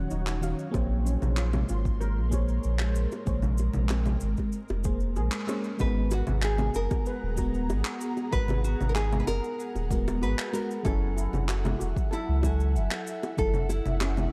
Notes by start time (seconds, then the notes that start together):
Already playing: D#3 F#3 C#4 D#4 F#4 C#5 F#5
0.11 D#1 D#4, shaker
0.27 clap, shaker
0.41 D#3 C#4 F#4 F5, high bongo, shaker
0.59 shaker
0.71 A#1 G#3 A#3 C4 G#4 A#4 C5 C6, kick, high bongo, shaker
1.05 C#4, shaker
1.22 A#1, high bongo, low conga, shaker
1.37 F4, clap, shaker
1.53 high bongo, low conga, shaker
1.69 G#1 F4, shaker
1.85 kick, shaker
2.01 A#4, high bongo, shaker
2.18 A#1
2.29 A#3 G#4 C5, kick, high bongo, shaker
2.34 C#5
2.48 shaker
2.63 A#1, shaker
2.79 clap, high bongo
2.95 shaker
3.12 high bongo, shaker
3.26 A#1 A#3 G#4 C5 C#5, kick, shaker
3.42 low conga, shaker
3.58 high bongo, shaker
3.73 A#1, low conga, shaker
3.89 C4, clap, high bongo, shaker
4.06 low conga, shaker
4.20 G#1, shaker
4.37 kick, high bongo, shaker
4.52 shaker
4.69 F1, high bongo, shaker
4.84 A#3 G#4 C5, kick, shaker
5.00 shaker
5.16 A#1 G#4, high bongo, shaker
5.32 clap, shaker
5.47 A#3 C#4 G#4 C5 C#5, high bongo, shaker
5.64 shaker
5.78 G#1 G#3 B3 D#4 F#4 G#4 B4 F#5 A#5, kick, high bongo, shaker
5.82 B3
6.11 F#4, high bongo, shaker
6.27 G#1, low conga, shaker
6.42 G#4, clap, shaker
6.58 high bongo, low conga, shaker
6.74 F#1 G#4 A#4, shaker
6.91 kick, high bongo, shaker
7.06 B4, shaker
7.23 D#1
7.36 G#3 F#4 A#5, kick, high bongo, shaker
7.41 B3
7.54 shaker
7.70 G#1, high bongo, shaker
7.85 clap
8.01 shaker
8.17 high bongo, shaker
8.31 G#1 G#3 F#4 A#4 B4, kick, shaker
8.48 high bongo, low conga, shaker
8.64 F#4, shaker
8.81 G#1, low conga, shaker
8.89 A#4
8.95 D#4 G#4, clap, high bongo, shaker
9.13 low conga, shaker
9.20 B4
9.27 F#1 A#4, high bongo, shaker
9.44 shaker
9.60 shaker
9.75 D#1, high bongo, shaker
9.90 G#3 B3 F#4 A#4, kick, shaker
10.08 high bongo, shaker
10.22 G#1 F#4 B4, shaker
10.39 clap
10.53 G#3 F#4 A#4 B4, high bongo, shaker
10.71 shaker
10.83 F#1 F#3 C#4 E4 A4 E5 G#5, kick, high bongo, shaker
10.88 A4
11.16 E4, shaker
11.33 F#1, high bongo, low conga, shaker
11.48 F#4, clap, shaker
11.65 high bongo, low conga, shaker
11.79 E1 F#4, shaker
11.96 kick, shaker
12.11 E4 A4, high bongo, shaker
12.29 C#2
12.42 F#3 E4 F#4 G#5, kick, high bongo, shaker
12.47 A4
12.60 shaker
12.76 F#1, shaker
12.91 clap, high bongo
13.07 shaker
13.23 high bongo, shaker
13.37 F#1 F#3 E4 G#4 A4, kick, shaker
13.54 low conga, shaker
13.69 E4, high bongo, shaker
13.86 F#1, low conga, shaker
14.01 C#4, clap, high bongo, shaker
14.17 low conga, shaker